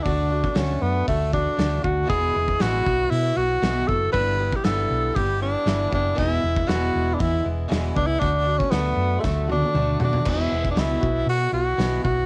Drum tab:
CC |----------------|----------------|----------------|----------------|
HH |o---o---o---o---|o---o---o---o---|o---o---o---o---|o---o---o---o---|
SD |----o-------o---|----o-------o---|----o-------o---|----o-------o---|
T1 |----------------|----------------|----------------|----------------|
T2 |----------------|----------------|----------------|----------------|
FT |----------------|----------------|----------------|----------------|
BD |o--o----o-o---o-|o--o--o-------o-|o--o----o-----o-|o--o----o-----o-|

CC |----------------|x---------------|
HH |o---o-----------|----o---o---o---|
SD |----o---o-------|----o-------o---|
T1 |----------oo----|----------------|
T2 |------------o---|----------------|
FT |--------------oo|----------------|
BD |o--o----o-------|o--o--o-------o-|